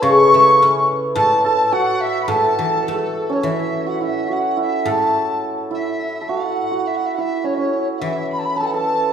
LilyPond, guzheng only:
\new Staff \with { instrumentName = "Guzheng" } { \clef bass \time 2/4 \tempo 4 = 105 cis8 a8 cis'4 | a,2 | a,8 e8 a4 | e2~ |
e8 a,4.~ | a,4. r8 | r2 | e2 | }